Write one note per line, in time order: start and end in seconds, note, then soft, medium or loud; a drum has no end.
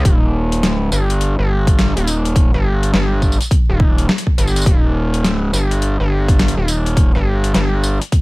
0.05 0.65 D#1 loud
0.05 kick loud
0.05 closed hi-hat medium
0.52 closed hi-hat medium
0.63 0.90 D1 loud
0.63 snare loud
0.63 closed hi-hat medium
0.92 1.36 G1 loud
0.92 tambourine medium
1.10 closed hi-hat medium
1.21 closed hi-hat medium
1.39 1.94 G1 loud
1.67 kick loud
1.67 closed hi-hat medium
1.79 snare loud
1.79 closed hi-hat medium
1.97 2.51 D#1 loud
1.97 closed hi-hat medium
2.07 closed hi-hat medium
2.07 tambourine medium
2.25 closed hi-hat medium
2.36 kick loud
2.36 closed hi-hat medium
2.54 2.92 G1 loud
2.54 cross-stick soft
2.83 closed hi-hat medium
2.94 3.38 G1 loud
2.94 snare loud
3.22 kick medium
3.22 tambourine soft
3.32 tambourine soft
3.41 closed hi-hat medium
3.41 tambourine soft
3.51 kick loud
3.51 closed hi-hat medium
3.69 4.07 D#1 loud
3.80 kick loud
3.98 closed hi-hat medium
4.09 snare loud
4.18 closed hi-hat medium
4.27 kick medium
4.38 4.65 G1 loud
4.38 closed hi-hat medium
4.38 tambourine soft
4.47 tambourine soft
4.56 closed hi-hat medium
4.56 tambourine soft
4.62 tambourine medium
4.66 5.26 D#1 loud
4.66 kick loud
4.66 closed hi-hat medium
5.14 closed hi-hat medium
5.25 5.51 D1 loud
5.25 snare loud
5.25 closed hi-hat medium
5.53 5.97 G1 loud
5.53 tambourine medium
5.71 closed hi-hat medium
5.82 closed hi-hat medium
6.00 6.55 G1 loud
6.28 kick loud
6.28 closed hi-hat medium
6.39 snare loud
6.39 closed hi-hat soft
6.48 closed hi-hat medium
6.57 7.12 D#1 loud
6.68 closed hi-hat medium
6.68 tambourine medium
6.86 closed hi-hat medium
6.97 kick loud
6.97 closed hi-hat medium
7.15 7.53 G1 loud
7.15 cross-stick soft
7.44 closed hi-hat medium
7.54 7.99 G1 loud
7.54 snare loud
7.54 closed hi-hat medium
7.84 tambourine medium
8.02 closed hi-hat medium
8.12 kick loud
8.12 closed hi-hat medium